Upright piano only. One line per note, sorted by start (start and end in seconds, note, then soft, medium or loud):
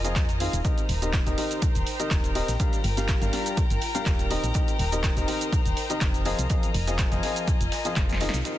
0.04 0.20 F3 medium
0.04 0.20 C4 medium
0.04 0.20 F4 medium
0.04 0.20 G#4 medium
0.04 0.20 D#5 loud
0.40 0.57 D#3 medium
0.40 0.57 C4 medium
0.40 0.57 F4 medium
0.40 0.57 G#4 medium
0.40 0.57 F5 medium
0.65 0.82 D#3 medium
0.65 0.82 C4 medium
0.65 0.82 G4 medium
0.65 0.82 A#4 medium
0.65 0.82 D#5 loud
1.02 1.23 D#3 medium
1.02 1.23 C4 medium
1.02 1.23 G4 medium
1.02 1.23 A#4 medium
1.02 1.23 D#5 medium
1.26 1.36 D#3 medium
1.26 1.36 C4 medium
1.26 1.36 G4 medium
1.26 1.36 A#4 medium
1.26 1.36 D#5 medium
1.38 1.64 D#3 medium
1.38 1.64 C4 medium
1.38 1.64 G4 medium
1.38 1.64 A#4 medium
1.38 1.64 D#5 medium
2.00 2.33 D#3 medium
2.00 2.33 C4 medium
2.00 2.33 G4 medium
2.00 2.33 A#4 medium
2.00 2.33 D#5 medium
2.35 2.52 C4 medium
2.35 2.52 G4 medium
2.35 2.52 A#4 medium
2.35 2.52 D#5 loud
2.60 2.77 G3 medium
2.60 2.77 D4 medium
2.60 2.77 G4 medium
2.60 2.77 A#4 medium
2.60 2.77 F5 medium
2.97 3.19 G3 medium
2.97 3.19 D4 medium
2.97 3.19 G4 medium
2.97 3.19 A#4 medium
2.97 3.19 F5 medium
3.22 3.31 G3 medium
3.22 3.31 D4 medium
3.22 3.31 G4 medium
3.22 3.31 A#4 medium
3.22 3.31 F5 medium
3.33 3.60 G3 medium
3.33 3.60 D4 medium
3.33 3.60 G4 medium
3.33 3.60 A#4 medium
3.33 3.60 F5 medium
3.95 4.28 G3 medium
3.95 4.28 D4 medium
3.95 4.28 G4 medium
3.95 4.28 A#4 medium
3.95 4.28 F5 medium
4.31 4.48 D#3 loud
4.31 4.48 C4 medium
4.31 4.48 G4 medium
4.31 4.48 A#4 medium
4.31 4.48 D#5 loud
4.55 4.72 D#3 medium
4.55 4.72 C4 medium
4.55 4.72 G4 medium
4.55 4.72 A#4 medium
4.55 4.72 D#5 medium
4.92 5.14 D#3 medium
4.92 5.14 C4 medium
4.92 5.14 G4 medium
4.92 5.14 A#4 medium
4.92 5.14 D#5 medium
5.17 5.26 D#3 medium
5.17 5.26 C4 medium
5.17 5.26 G4 medium
5.17 5.26 A#4 medium
5.17 5.26 D#5 medium
5.28 5.55 D#3 medium
5.28 5.55 C4 medium
5.28 5.55 G4 medium
5.28 5.55 A#4 medium
5.28 5.55 D#5 medium
5.90 6.23 D#3 medium
5.90 6.23 C4 medium
5.90 6.23 G4 medium
5.90 6.23 A#4 medium
5.90 6.23 D#5 loud
6.26 6.43 F3 loud
6.26 6.43 C4 medium
6.26 6.43 F4 medium
6.26 6.43 G#4 medium
6.26 6.43 D#5 loud
6.50 6.67 F3 medium
6.50 6.67 C4 medium
6.50 6.67 F4 medium
6.50 6.67 G#4 medium
6.50 6.67 D#5 medium
6.87 7.09 F3 medium
6.87 7.09 C4 medium
6.87 7.09 F4 medium
6.87 7.09 G#4 medium
6.87 7.09 D#5 medium
7.12 7.21 F3 medium
7.12 7.22 C4 medium
7.12 7.22 F4 medium
7.12 7.22 G#4 medium
7.12 7.22 D#5 medium
7.23 7.50 F3 medium
7.23 7.50 C4 medium
7.23 7.50 F4 medium
7.23 7.50 G#4 medium
7.23 7.50 D#5 medium
7.85 8.18 F3 medium
7.85 8.18 C4 medium
7.85 8.18 F4 medium
7.85 8.18 G#4 medium
7.85 8.18 D#5 medium
8.21 8.38 D#3 loud
8.21 8.38 C4 medium
8.21 8.38 F4 medium
8.21 8.38 G#4 medium
8.21 8.38 D#5 loud
8.45 8.58 D#3 medium
8.45 8.58 C4 medium
8.45 8.58 G4 medium
8.45 8.58 A#4 medium
8.45 8.58 D#5 medium